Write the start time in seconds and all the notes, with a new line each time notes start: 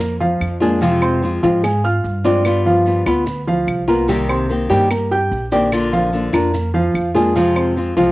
Already playing: F2 A#3 A#4 A#5
0.00 muted nylon-string guitar stroke, maracas
0.20 F3 F4 F5, maracas
0.41 F2, claves, maracas
0.61 G#3 A#3 D4 F4 G#4 G#5, maracas
0.81 C3 F3 G#3 C4 F4 F5, maracas
1.02 C4 C5 C6, claves, maracas
1.22 F3 G#3 C4 F4, maracas
1.43 G#2 F3 G#3 C4 F4 F5, maracas
1.63 G#3 G#4 G#5, muted nylon-string guitar stroke, claves, maracas
1.84 F4 F5 F6, maracas
2.04 G2, maracas
2.24 F3 G#3 C4 D4 F4 D5 D6, maracas
2.44 G3 B3 F4, claves, maracas
2.66 F3 F4 F5, maracas
2.85 G3 B3 F4, maracas
3.06 D2 B3 F4 B4 B5, claves, maracas
3.26 muted nylon-string guitar stroke, maracas
3.47 F3 F4 F5, maracas
3.67 C2, claves, maracas
3.88 A#3 B3 F4 A#4 A#5, maracas
4.08 C3 D#3 G3 A#3 C4 G4 G5, maracas
4.29 C4 C5 C6, claves, maracas
4.49 D#3 A#3 C4 G4, maracas
4.70 G2 D#3 G3 A#3 C4 G4 G5, maracas
4.91 A#3 A#4 A#5, muted nylon-string guitar stroke, claves, maracas
5.11 G4 G5 G6, maracas
5.31 A#1, maracas
5.52 D#3 A#3 C4 D4 G4 D5 D6, maracas
5.72 D3 A#3 D4 F4, claves, maracas
5.93 F3 F4 F5, maracas
6.13 D3 A#3 D4 F4, maracas
6.33 F2 A#3 D4 F4 A#4 A#5, claves, maracas
6.54 muted nylon-string guitar stroke, maracas
6.74 F3 F4 F5, maracas
6.94 F2, claves, maracas
7.14 G#3 A#3 D4 F4 G#4 G#5, maracas
7.35 C3 F3 G#3 C4 F4 F5, maracas
7.56 C4 C5 C6, claves, maracas
7.76 F3 G#3 C4 F4, maracas
7.97 C2 F3 G#3 C4 F4 F5, maracas